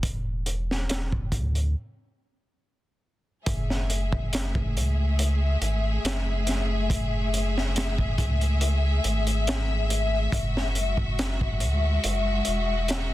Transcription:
0.00 1.34 E1 medium
0.00 kick loud
0.00 closed hi-hat medium
0.46 closed hi-hat medium
0.71 snare soft
0.89 snare loud
0.89 closed hi-hat medium
1.12 kick medium
1.32 1.75 D2 medium
1.32 kick medium
1.32 closed hi-hat medium
1.55 closed hi-hat soft
3.45 4.76 F#1 medium
3.45 10.27 A3 medium
3.45 10.27 G#4 medium
3.45 13.14 E5 medium
3.45 kick loud
3.45 closed hi-hat medium
3.70 snare soft
3.90 closed hi-hat medium
4.12 kick medium
4.33 snare loud
4.33 closed hi-hat loud
4.55 kick loud
4.75 5.57 C#2 medium
4.75 closed hi-hat medium
5.19 closed hi-hat medium
5.61 5.99 G#1 medium
5.61 closed hi-hat medium
6.04 8.20 F#1 medium
6.04 snare loud
6.04 closed hi-hat medium
6.47 snare soft
6.47 closed hi-hat medium
6.90 kick loud
6.90 closed hi-hat loud
7.34 closed hi-hat medium
7.58 snare soft
7.76 snare loud
7.76 closed hi-hat medium
7.98 kick loud
8.18 9.00 C#2 medium
8.18 kick medium
8.18 closed hi-hat medium
8.41 closed hi-hat soft
8.61 closed hi-hat medium
9.04 10.29 G#1 loud
9.04 closed hi-hat medium
9.27 closed hi-hat soft
9.47 snare loud
9.47 closed hi-hat medium
9.90 closed hi-hat medium
10.30 11.62 F#1 medium
10.30 13.14 G#3 medium
10.30 13.14 F#4 medium
10.30 kick loud
10.30 closed hi-hat medium
10.57 snare medium
10.75 closed hi-hat medium
10.97 kick medium
11.19 snare loud
11.19 closed hi-hat medium
11.41 kick medium
11.60 11.99 D2 medium
11.60 closed hi-hat medium
12.04 12.42 F#1 loud
12.04 closed hi-hat medium
12.45 13.14 E1 medium
12.45 closed hi-hat medium
12.88 snare loud
12.88 closed hi-hat medium

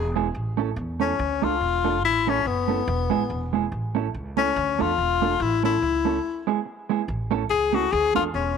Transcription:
0.00 0.27 E1 loud
0.00 0.12 G#4 medium
0.16 0.27 G#3 medium
0.16 0.27 B3 medium
0.16 0.27 E4 loud
0.16 0.27 G#4 loud
0.34 0.70 A1 medium
0.57 0.69 A3 medium
0.57 0.69 C#4 loud
0.57 0.69 E4 medium
0.57 0.70 A4 loud
0.76 1.12 E2 loud
1.00 1.11 A3 medium
1.00 1.11 C#4 medium
1.00 1.45 C#4 medium
1.00 1.12 E4 medium
1.00 1.12 A4 medium
1.19 1.39 D2 loud
1.42 1.58 C#2 medium
1.42 1.53 A3 medium
1.42 1.53 D4 medium
1.42 1.54 F4 medium
1.42 2.03 F4 loud
1.42 1.54 A4 loud
1.61 2.03 E1 medium
1.84 1.95 A3 medium
1.84 1.96 D4 medium
1.84 1.96 F4 medium
1.84 1.96 A4 medium
2.03 2.38 A1 loud
2.03 2.31 E4 loud
2.27 2.38 A3 medium
2.27 2.38 C#4 medium
2.27 2.48 C#4 loud
2.27 2.39 E4 loud
2.27 2.39 A4 medium
2.45 2.81 F#1 medium
2.45 3.54 B3 medium
2.68 2.79 A3 medium
2.68 2.80 C#4 medium
2.68 2.80 E4 medium
2.68 2.80 A4 medium
2.88 3.08 E1 loud
3.10 3.21 G#3 loud
3.10 3.22 B3 loud
3.10 3.22 E4 loud
3.10 3.22 G#4 loud
3.29 3.65 E1 loud
3.29 muted clean electric guitar stroke soft
3.53 3.64 G#3 medium
3.53 3.64 B3 medium
3.53 3.65 E4 medium
3.53 3.65 G#4 medium
3.72 4.07 A1 loud
3.95 4.06 A3 medium
3.95 4.06 C#4 medium
3.95 4.07 E4 loud
3.95 4.07 A4 medium
4.14 4.50 C#2 medium
4.37 4.48 A3 medium
4.37 4.48 C#4 medium
4.37 4.83 C#4 loud
4.37 4.49 E4 medium
4.37 4.49 A4 loud
4.56 4.76 D2 loud
4.79 4.95 E2 medium
4.79 4.90 A3 medium
4.79 4.91 D4 medium
4.79 4.91 F4 medium
4.79 5.43 F4 loud
4.79 4.91 A4 loud
4.98 5.34 E1 medium
5.22 5.33 A3 medium
5.22 5.33 D4 medium
5.22 5.33 F4 medium
5.22 5.33 A4 medium
5.40 5.75 A1 loud
5.40 5.64 E4 medium
5.63 5.75 A3 medium
5.63 5.75 C#4 medium
5.63 5.75 E4 medium
5.63 6.44 E4 medium
5.63 5.75 A4 loud
5.82 6.18 C#2 medium
6.05 6.16 A3 medium
6.05 6.17 C#4 medium
6.05 6.17 E4 medium
6.05 6.17 A4 medium
6.47 6.58 G#3 medium
6.47 6.59 B3 medium
6.47 6.59 E4 medium
6.47 6.59 G#4 loud
6.65 muted clean electric guitar stroke soft
6.89 7.01 G#3 medium
6.89 7.01 B3 medium
6.89 7.01 E4 medium
6.89 7.01 G#4 medium
7.08 7.44 A1 medium
7.31 7.42 A3 loud
7.31 7.42 C#4 loud
7.31 7.43 E4 medium
7.31 7.43 A4 loud
7.50 7.86 C#2 medium
7.50 7.76 G#4 loud
7.72 7.84 A3 medium
7.72 7.84 C#4 medium
7.72 7.85 E4 loud
7.72 7.93 F#4 medium
7.72 7.85 A4 medium
7.92 8.12 D2 loud
7.92 8.15 G#4 loud
8.15 8.31 E2 medium
8.15 8.26 A3 medium
8.15 8.26 D4 medium
8.15 8.24 F4 medium
8.15 8.27 F4 medium
8.15 8.27 A4 loud
8.34 8.58 E1 medium
8.34 8.58 C#4 medium

